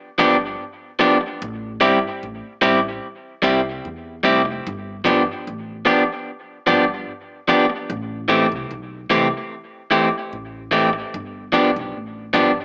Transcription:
0.18 upright bass G1, clean electric guitar F3 B3 D4 G4
0.99 clean electric guitar F3 B3 D4 G4
1.21 muted clean electric guitar stroke
1.42 upright bass A1
1.81 upright bass G1, clean electric guitar G3 C4 E4 G4
2.23 upright bass A1
2.62 upright bass A1, clean electric guitar G3 C4 E4 G4
3.42 upright bass C2, clean electric guitar G3 C4 E4 G4
3.85 upright bass E2
4.23 upright bass F1, clean electric guitar G3 C4 E4 G4
4.45 muted clean electric guitar stroke
4.67 upright bass G1
5.05 upright bass G1, clean electric guitar F3 B3 D4 G4
5.47 upright bass A1
5.85 clean electric guitar F3 B3 D4 G4
6.67 upright bass G1, clean electric guitar F3 B3 D4 G4
7.48 clean electric guitar F3 B3 D4 G4
7.70 muted clean electric guitar stroke
7.90 upright bass A1
8.28 clean electric guitar E3 A3 C4 G4
8.52 upright bass C2
8.71 upright bass B1
9.10 upright bass C2, clean electric guitar E3 A3 C4 G4
9.91 clean electric guitar E3 A3 C4 G4
10.33 upright bass A1
10.71 clean electric guitar E3 A3 C4 G4
10.93 muted clean electric guitar stroke
11.14 upright bass G1
11.52 clean electric guitar F3 B3 D4 G4
11.76 upright bass B1
11.95 upright bass A1
12.33 upright bass G1, clean electric guitar F3 B3 D4 G4

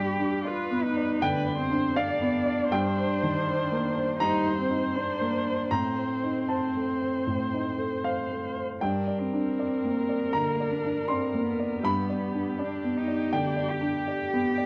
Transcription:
Already playing: upright piano G2 D5 B5, cello G4, viola G4
0.19 upright piano D4
0.45 cello F4, viola B4, upright piano D5
0.71 upright piano B3
0.83 cello D#4
0.97 upright piano D5
1.21 upright piano D3 G5, cello D4, viola B4
1.48 upright piano D5
1.58 cello C4, viola C5
1.71 upright piano D4
1.95 cello D4, viola D5, upright piano D5 F5
2.21 upright piano B3
2.46 upright piano D5
2.72 upright piano G2 G5, viola C5
2.97 upright piano C5
3.23 upright piano D#3
3.48 upright piano C5
3.72 upright piano A#3
3.96 upright piano C5
4.20 upright piano G3 A#5, cello D#4, viola C5
4.46 upright piano C5
4.59 cello C4
4.70 upright piano D#4
4.95 cello D4, upright piano C5
5.21 upright piano A#3
5.45 upright piano C5
5.71 upright piano A2 A#5, cello C4, viola C5
5.96 upright piano C5
6.23 upright piano D#4
6.49 upright piano C5 A5, viola C5
6.76 upright piano A3
7.02 upright piano C5
7.27 upright piano A2
7.53 upright piano D#4
7.78 upright piano A3
8.04 upright piano C5 F5
8.31 upright piano A3
8.57 upright piano C5
8.81 upright piano G2 G5, cello D4, viola A#4
9.08 upright piano D5
9.19 cello C4
9.33 upright piano D4
9.59 upright piano D5
9.84 upright piano A#3
10.09 upright piano D5
10.33 upright piano D3 A#5, cello A#3
10.60 upright piano D5
10.71 cello D4
10.85 upright piano D4
11.08 cello C4, upright piano D5 C6
11.34 upright piano A#3
11.48 cello B3
11.60 upright piano D5
11.83 upright piano G2 B5, viola G4
12.10 upright piano D5
12.34 upright piano D4
12.59 cello D4, upright piano D5
12.84 upright piano B3
12.97 cello D#4
13.08 upright piano D5
13.33 upright piano D3 G5, cello D4
13.57 upright piano D5
13.71 cello G4
13.81 upright piano D4
14.08 upright piano D5
14.33 upright piano B3
14.58 upright piano D5

